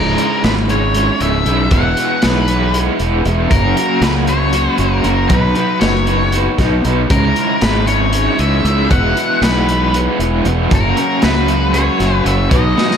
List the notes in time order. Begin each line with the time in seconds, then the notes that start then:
Already playing: C#1 C#2 G#2 C#3 G#3 E4 A#4
0.18 C#3 G#3 E4, closed hi-hat
0.44 G#1 C#2 G#2 C#3 G#3 E4 B4, snare, closed hi-hat
0.69 G#3 E4 C#5, closed hi-hat
0.74 C#3
0.94 G#2 C#3 G#3 E4, closed hi-hat
1.20 C#1 C#3 G#3 E4 E5, closed hi-hat
1.45 B1 C#2 G#2 C#3 G#3 E4, closed hi-hat
1.71 E1 E2 B2 E3 G#3 B3 E4 F#5, kick, closed hi-hat
1.97 E3 G#3 B3 E4, closed hi-hat
2.22 B1 E2 B2 E3 G#3 B3 E4 B4, snare, closed hi-hat
2.48 E3 G#3 B3 E4, closed hi-hat
2.74 E3 G#3 B3 E4, closed hi-hat
2.99 E1 E3 G#3 B3 E4, closed hi-hat
3.25 E1 E2 B2 E3 G#3 B3 E4, closed hi-hat
3.51 F#1 F#2 C#3 F#3 A#3 C#4 F#4 A#4, kick, closed hi-hat
3.77 F#3 A#3 C#4 F#4, closed hi-hat
4.01 C#2 F#2 C#3 F#3 A#3 C#4 F#4 B4, snare, closed hi-hat
4.27 F#3 A#3 C#4 F#4 C#5, closed hi-hat
4.53 F#3 A#3 C#4 F#4, closed hi-hat
4.78 F#1 F#3 A#3 C#4 F#4 A#4, closed hi-hat
5.03 F#1 F#2 C#3 F#3 A#3 C#4 F#4, closed hi-hat
5.29 B1 B2 F#3 B3 D#4 F#4 B4, kick, closed hi-hat
5.55 B3 D#4 F#4 B4, closed hi-hat
5.81 F#1 B2 F#3 B3 D#4 F#4 B4 C#5, snare, closed hi-hat
6.07 B3 D#4 F#4 B4, closed hi-hat
6.32 B3 D#4 F#4 B4, closed hi-hat
6.58 B1 B3 D#4 F#4 B4, kick, snare, closed hi-hat
6.84 B1 B2 F#3 B3 D#4 F#4 B4, closed hi-hat
7.09 C#2 G#2 C#3 G#3 E4 A#4, kick, closed hi-hat
7.35 C#3 G#3 E4, closed hi-hat
7.60 G#1 C#2 G#2 C#3 G#3 E4 B4, snare, closed hi-hat
7.87 C#3 G#3 E4 C#5, closed hi-hat
8.12 G#2 C#3 G#3 E4, closed hi-hat
8.38 C#2 C#3 G#3 E4 E5, closed hi-hat
8.63 C#2 G#2 C#3 G#3 E4, closed hi-hat
8.89 E1 E2 B2 E3 G#3 B3 E4 F#5, kick, closed hi-hat
9.16 E3 G#3 B3 E4, closed hi-hat
9.41 B1 E2 B2 E3 G#3 B3 E4 B4, snare, closed hi-hat
9.68 E3 G#3 B3 E4, closed hi-hat
9.94 E3 G#3 B3 E4, closed hi-hat
10.19 E1 E3 G#3 B3 E4, closed hi-hat
10.45 E1 E2 B2 E3 G#3 B3 E4, closed hi-hat
10.70 F#1 F#2 C#3 F#3 A#3 C#4 F#4, kick, closed hi-hat
10.75 A#4
10.97 F#3 A#3 C#4 F#4, closed hi-hat
11.22 C#2 F#2 C#3 F#3 A#3 C#4 F#4 B4, snare, closed hi-hat
11.48 F#3 A#3 C#4 F#4, closed hi-hat
11.73 F#3 A#3 C#4 F#4 C#5, closed hi-hat
11.99 F#1 F#3 A#3 C#4 F#4, snare, closed hi-hat
12.16 B4
12.24 F#1 F#2 C#3 F#3 A#3 C#4 F#4 E5, closed hi-hat
12.50 B1 B2 F#3 B3 D#4 F#4 B4 D#5, kick, closed hi-hat
12.75 B3 D#4 F#4 B4, snare
12.91 snare